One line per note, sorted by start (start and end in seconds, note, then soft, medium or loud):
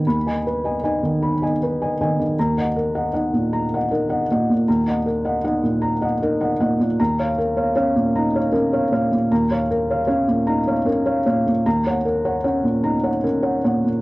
0.00 0.17 D#3 soft
0.07 2.33 D#2 soft
0.07 0.37 B5 soft
0.27 0.43 D#5 soft
0.27 0.43 G#5 soft
0.47 0.76 B4 soft
0.64 0.81 D#5 soft
0.64 0.81 G#5 soft
0.83 1.44 D#4 soft
0.83 1.00 D#5 soft
0.83 1.00 G#5 soft
1.03 1.33 D#3 soft
1.22 1.52 B5 soft
1.42 1.58 D#5 soft
1.42 1.59 G#5 soft
1.62 2.23 D#4 soft
1.62 1.92 B4 soft
1.82 1.98 D#5 soft
1.82 1.97 G#5 soft
2.01 2.18 D#3 soft
2.01 2.17 D#5 soft
2.01 2.17 G#5 soft
2.19 2.37 D#3 soft
2.39 4.64 D#2 soft
2.39 2.68 A#5 soft
2.58 2.74 D#5 soft
2.58 2.74 F#5 soft
2.76 3.06 A#4 soft
2.95 3.11 D#5 soft
2.95 3.12 F#5 soft
3.13 3.75 D#4 soft
3.13 3.30 D#5 soft
3.13 3.31 F#5 soft
3.33 3.64 A#2 soft
3.53 3.83 A#5 soft
3.74 3.90 D#5 soft
3.74 3.90 F#5 soft
3.91 4.52 D#4 soft
3.91 4.21 A#4 soft
4.09 4.26 D#5 soft
4.09 4.27 F#5 soft
4.31 4.48 A#2 soft
4.31 4.47 D#5 soft
4.31 4.47 F#5 soft
4.50 4.79 A#2 soft
4.68 6.96 D#2 soft
4.68 4.98 A#5 soft
4.88 5.04 D#5 soft
4.88 5.04 F#5 soft
5.06 5.36 A#4 soft
5.25 5.41 D#5 soft
5.25 5.42 F#5 soft
5.44 6.05 D#4 soft
5.44 5.61 D#5 soft
5.44 5.61 F#5 soft
5.63 5.93 A#2 soft
5.82 6.12 A#5 soft
6.01 6.19 D#5 soft
6.01 6.19 F#5 soft
6.22 6.84 D#4 soft
6.22 6.53 A#4 soft
6.41 6.58 D#5 soft
6.41 6.58 F#5 soft
6.60 6.78 A#2 soft
6.60 6.78 D#5 soft
6.60 6.78 F#5 soft
6.80 6.99 A#2 soft
7.00 9.27 D#2 soft
7.00 7.30 A#5 medium
7.19 7.36 C#5 soft
7.19 7.36 F5 soft
7.38 7.69 A#4 soft
7.57 7.74 C#5 soft
7.57 7.74 F5 soft
7.76 8.38 C#4 soft
7.76 7.93 C#5 soft
7.76 7.94 F5 soft
7.96 8.27 A#2 soft
8.15 8.54 D#4 soft
8.15 8.46 A#5 soft
8.35 8.52 C#5 soft
8.35 8.52 F5 soft
8.52 9.14 C#4 soft
8.52 8.84 A#4 soft
8.73 8.90 C#5 soft
8.73 8.90 F5 soft
8.92 9.10 A#2 soft
8.92 9.09 C#5 soft
8.92 9.10 F5 soft
9.12 9.42 A#2 soft
9.31 11.62 D#2 soft
9.31 9.62 A#5 soft
9.51 9.68 C#5 soft
9.51 9.69 F5 soft
9.71 10.01 A#4 soft
9.90 10.06 C#5 soft
9.90 10.06 F5 soft
10.07 10.70 C#4 soft
10.07 10.25 C#5 soft
10.07 10.26 F5 soft
10.28 10.59 A#2 soft
10.47 10.87 D#4 soft
10.47 10.78 A#5 soft
10.67 10.85 C#5 soft
10.67 10.85 F5 soft
10.85 11.49 C#4 soft
10.85 11.18 A#4 soft
11.06 11.24 C#5 soft
11.06 11.24 F5 soft
11.26 11.45 A#2 soft
11.26 11.44 C#5 soft
11.26 11.44 F5 soft
11.47 11.66 A#2 soft
11.66 14.02 D#2 soft
11.66 11.97 A#5 medium
11.87 12.04 C#5 soft
11.87 12.04 F#5 soft
12.05 12.37 A#4 soft
12.25 12.42 C#5 soft
12.25 12.43 F#5 soft
12.44 13.08 C#4 soft
12.44 12.62 C#5 soft
12.44 12.62 F#5 soft
12.63 12.96 A#2 soft
12.84 13.24 D#4 soft
12.84 13.16 A#5 soft
13.03 13.22 C#5 soft
13.03 13.22 F#5 soft
13.24 13.89 C#4 soft
13.24 13.56 A#4 soft
13.43 13.62 C#5 soft
13.43 13.62 F#5 soft
13.64 13.83 A#2 soft
13.64 13.83 C#5 soft
13.64 13.83 F#5 soft
13.84 14.02 A#2 soft